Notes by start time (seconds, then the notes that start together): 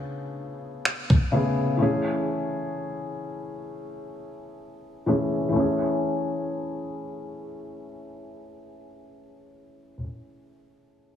Already playing: C#3 A3 B3 G#4
0.85 finger snap
1.10 kick
1.32 C#3 A3 B3 G#4
1.77 E3 A3 C#4
1.82 G#4
5.06 E3 A3 C#4 G#4
5.49 E3 A3
5.56 C#4 G#4